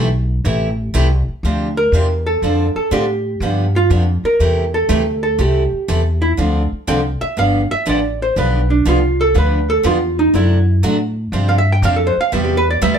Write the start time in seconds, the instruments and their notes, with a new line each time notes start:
Already playing: upright bass B1
0.44 upright bass A1, steel-string acoustic guitar C3 E3 A3 E4 G4
0.94 upright bass C2, steel-string acoustic guitar C3 E3 A3 E4 G4
1.28 muted upright bass stroke
1.43 upright bass D2, steel-string acoustic guitar C3 F3 C4 D4 G4
1.77 hollow-body jazz guitar A#4
1.92 upright bass E2, steel-string acoustic guitar C3 F3 C4 D4 G4
2.26 hollow-body jazz guitar A4
2.42 upright bass F2, steel-string acoustic guitar D3 F3 C4 D4 A4
2.75 hollow-body jazz guitar A4, muted upright bass stroke
2.91 upright bass A2, steel-string acoustic guitar D3 F3 C4 D4 A4, hollow-body jazz guitar G4
3.40 upright bass G2, steel-string acoustic guitar D3 F3 B3 D4 G4
3.76 hollow-body jazz guitar F4
3.90 upright bass F2, steel-string acoustic guitar D3 F3 B3 D4 G4
4.23 hollow-body jazz guitar A#4, muted upright bass stroke
4.39 upright bass E2, steel-string acoustic guitar C3 E3 A3 E4 G4
4.74 hollow-body jazz guitar A4
4.89 upright bass D2, steel-string acoustic guitar C3 E3 A3 E4 G4
5.23 hollow-body jazz guitar A4
5.38 upright bass C2, steel-string acoustic guitar C3 E3 A3 E4 A4, hollow-body jazz guitar G4
5.73 muted upright bass stroke
5.88 upright bass E2, steel-string acoustic guitar C3 E3 A3 E4 A4
6.22 hollow-body jazz guitar E4
6.37 upright bass D2, steel-string acoustic guitar D3 F3 C4 D4 A4
6.72 muted upright bass stroke
6.87 upright bass C2, steel-string acoustic guitar D3 F3 C4 D4 A4, hollow-body jazz guitar G5
7.21 hollow-body jazz guitar E5, muted upright bass stroke
7.37 upright bass G1, steel-string acoustic guitar D3 F3 B3 D4 G4, hollow-body jazz guitar F5
7.71 hollow-body jazz guitar E5, muted upright bass stroke
7.86 upright bass A1, steel-string acoustic guitar D3 F3 B3 D4 G4, hollow-body jazz guitar D5
8.22 hollow-body jazz guitar C5
8.36 upright bass B1, steel-string acoustic guitar D3 F3 B3 D4 G4, hollow-body jazz guitar B4
8.70 hollow-body jazz guitar D4
8.85 upright bass C2, steel-string acoustic guitar D3 F3 B3 D4 G4, hollow-body jazz guitar F4
9.21 hollow-body jazz guitar A4
9.34 upright bass D2, steel-string acoustic guitar D3 F3 B3 D4 G4, hollow-body jazz guitar B4
9.70 hollow-body jazz guitar A4
9.83 upright bass E2, steel-string acoustic guitar D3 F3 B3 D4 G4, hollow-body jazz guitar F4
10.19 hollow-body jazz guitar D#4
10.33 upright bass F#2, steel-string acoustic guitar C3 F#3 A3 D4 F#4, hollow-body jazz guitar E4
10.83 upright bass A2, steel-string acoustic guitar C3 F#3 A3 D4 F#4
11.32 upright bass G2, steel-string acoustic guitar C3 F3 C4 D4 G4
11.49 hollow-body jazz guitar F5
11.58 hollow-body jazz guitar E5
11.72 hollow-body jazz guitar G5
11.82 upright bass F2, steel-string acoustic guitar C3 F3 C4 D4 G4, hollow-body jazz guitar F5
11.96 hollow-body jazz guitar A4
12.07 hollow-body jazz guitar C5
12.17 muted upright bass stroke
12.21 hollow-body jazz guitar F5
12.32 upright bass E2, steel-string acoustic guitar C3 G3 B3 E4 G4, hollow-body jazz guitar E5
12.45 hollow-body jazz guitar G4
12.57 hollow-body jazz guitar B4
12.71 hollow-body jazz guitar D5
12.82 upright bass D2, steel-string acoustic guitar C3 G3 B3 E4 G4, hollow-body jazz guitar E5
12.94 hollow-body jazz guitar D5